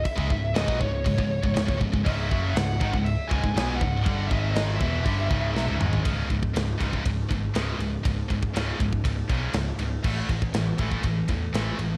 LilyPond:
<<
  \new Staff \with { instrumentName = "Lead electric guitar" } { \time 4/4 \key cis \minor \tempo 4 = 120 e''4 dis''8 cis''2 r8 | e''4 fis''4 e''8 gis''4 fis''8 | fis''8 e''8 dis''8 e''2 r8 | r1 |
r1 | r1 | }
  \new Staff \with { instrumentName = "Distorted electric guitar" } { \clef bass \time 4/4 \key cis \minor r16 <cis gis>16 <cis, gis,>8 <cis, gis,>16 <b, fis>16 <cis, gis,>8 <cis, gis,>16 <cis, gis,>8 <cis, gis,>16 <cis, gis,>16 <cis, gis,>16 <cis, gis,>16 <cis, gis,>16 | <cis, gis, cis>8 <fis, cis fis>8 <cis, gis,>8 <gis, dis>16 <cis, gis,>8 r16 <cis, gis,>16 <cis, gis,>16 <b, fis b>8 <cis, gis,>8 | <g, d g>8 <gis, dis gis>4 <e, b, e>8 <g, d g>8 <cis, gis, cis>8 <b, fis>16 <cis, gis,>16 <gis, dis gis>8 | <cis, gis, cis>8 <cis, gis,>8 <cis, gis,>8 <cis, gis, cis>8 <cis, gis,>8 <cis, gis,>8 <cis, gis, cis>8 <cis, gis,>8 |
<cis, gis,>8 <cis, gis,>8 <cis, gis, cis>8 <cis, gis,>8 <cis, gis,>8 <cis, gis, cis>8 <cis, gis,>8 <cis, gis,>8 | <a, e a>8 <a, e>8 <a, e>8 <a, e a>8 <a, e>8 <a, e>8 <a, e a>8 <a, e>8 | }
  \new Staff \with { instrumentName = "Distorted electric guitar" } { \clef bass \time 4/4 \key cis \minor r1 | <cis, gis, cis>8 <fis, cis fis>8 <cis, gis,>8 <gis, dis>16 <cis, gis,>8 r16 <cis, gis,>16 <cis, gis,>16 <b, fis b>8 <cis, gis,>8 | <g, d g>8 <gis, dis gis>4 <e, b, e>8 <g, d g>8 <cis, gis, cis>8 <b, fis>16 <cis, gis,>16 <gis, dis gis>8 | <cis, gis, cis>8 <cis, gis,>8 <cis, gis,>8 <cis, gis, cis>8 <cis, gis,>8 <cis, gis,>8 <cis, gis, cis>8 <cis, gis,>8 |
<cis, gis,>8 <cis, gis,>8 <cis, gis, cis>8 <cis, gis,>8 <cis, gis,>8 <cis, gis, cis>8 <cis, gis,>8 <cis, gis,>8 | <a, e a>8 <a, e>8 <a, e>8 <a, e a>8 <a, e>8 <a, e>8 <a, e a>8 <a, e>8 | }
  \new Staff \with { instrumentName = "Distorted electric guitar" } { \clef bass \time 4/4 \key cis \minor r16 <cis gis>16 <cis, gis,>8 <cis, gis,>16 <b, fis>16 <cis, gis,>8 <cis, gis,>16 <cis, gis,>8 <cis, gis,>16 <cis, gis,>16 <cis, gis,>16 <cis, gis,>16 <cis, gis,>16 | <cis, gis, cis>8 <fis, cis fis>8 <cis, gis,>8 <gis, dis>16 <cis, gis,>8 r16 <cis, gis,>16 <cis, gis,>16 <b, fis b>8 <cis, gis,>8 | <g, d g>8 <gis, dis gis>4 <e, b, e>8 <g, d g>8 <cis, gis, cis>8 <b, fis>16 <cis, gis,>16 <gis, dis gis>8 | r1 |
r1 | r1 | }
  \new Staff \with { instrumentName = "Picked electric bass" } { \clef bass \time 4/4 \key cis \minor r16 cis,16 cis,,8 cis,,16 b,,16 cis,,8 cis,,16 cis,,8 cis,,16 cis,,16 cis,,16 cis,,16 cis,,16 | cis,,8 fis,,8 cis,,8 gis,,16 cis,,8 r16 cis,,16 cis,,16 b,,8 cis,,8 | g,,8 gis,,4 e,,8 g,,8 cis,,8 b,,16 cis,,16 gis,,8 | cis,,8 cis,,8 cis,,8 cis,,8 cis,,8 gis,,8 cis,,8 cis,,8 |
cis,,8 cis,,8 cis,,8 cis,,8 cis,,8 b,,8 cis,,8 cis,,8 | a,,8 a,,8 a,,8 a,,8 a,,8 e,8 a,,8 a,,8 | }
  \new DrumStaff \with { instrumentName = "Drums" } \drummode { \time 4/4 <cymc bd>16 bd16 bd8 <cymc sn>16 bd16 bd8 <cymc bd>16 bd8 bd16 <cymc sn>16 bd16 bd16 bd16 | <cymc bd>8 bd8 <cymc sn>8 bd16 bd16 cymc8 bd16 bd16 <cymc sn>8 bd8 | <cymc bd>8 bd8 <cymc sn>8 bd8 <cymc bd>8 bd8 sn8 toml16 tomfh16 | <bd cymr>8 <bd cymr>16 bd16 <cymr sn>8 <bd cymr>16 bd16 <bd cymr>8 <bd cymr>8 <cymr sn>8 cymr8 |
<bd cymr>8 <bd cymr>16 bd16 <cymr sn>8 <bd cymr>16 bd16 <bd cymr>8 <bd cymr>8 <cymr sn>8 cymr8 | <cymc bd>8 <bd cymr>16 bd16 <cymr sn>8 <bd cymr>16 bd16 <bd cymr>8 <bd cymr>8 <cymr sn>8 cymr8 | }
>>